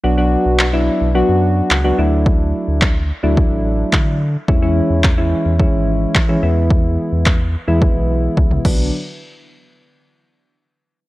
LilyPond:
<<
  \new Staff \with { instrumentName = "Synth keys" } { \time 4/4 \key b \dorian \tempo 4 = 108 <fis b d' fis'>16 <fis b d' fis'>8. r16 <fis b d' e'>8. <fis b d' fis'>4 r16 <fis b d' fis'>16 <fis a d' e'>8~ | <fis a d' e'>4~ <fis a d' e'>16 r8 <fis a d' e'>4.~ <fis a d' e'>16 r8 | <e gis cis' e'>16 <e gis cis' e'>8. r16 <e gis cis' e'>8. <e gis cis' e'>4 r16 <e gis cis' e'>16 <e gis b e'>8~ | <e gis b e'>4~ <e gis b e'>16 r8 <e gis b e'>4.~ <e gis b e'>16 <d fis b d'>8 |
r1 | }
  \new Staff \with { instrumentName = "Analog synth bass" } { \clef bass \time 4/4 \key b \dorian b,,8. b,,4 b,,8 fis,8. cis,8 d,8~ | d,8. d,4 d,8 a,,8. d4 | e,8. e,4 e,8 gis,,8. e8 e,8~ | e,8. e,4 e,8 b,,8. cis,8 b,,8 |
r1 | }
  \new DrumStaff \with { instrumentName = "Drums" } \drummode { \time 4/4 r4 hc4 r4 hc4 | bd4 <hc bd>4 bd4 <hc bd>4 | bd4 <hc bd>4 bd4 <hc bd>4 | bd4 <hc bd>4 bd4 <bd tommh>16 toml16 <cymc bd>8 |
r4 r4 r4 r4 | }
>>